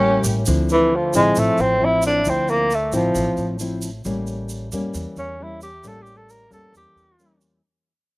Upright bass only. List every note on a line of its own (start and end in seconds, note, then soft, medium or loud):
0.00 0.20 A1 medium
0.24 0.45 A1 medium
0.47 1.10 D2 medium
1.14 1.35 A1 medium
1.37 1.47 A1 medium
1.59 2.21 A1 medium
2.25 2.89 D2 medium
2.92 3.13 A1 medium
3.15 3.25 A1 medium
3.38 4.01 A1 medium
4.05 4.68 A1 medium
4.72 4.92 E2 medium
4.94 5.04 E2 medium
5.17 5.80 E2 medium
5.83 6.47 A1 medium
6.51 6.72 E2 medium
6.72 6.83 E2 medium
6.95 7.59 E2 medium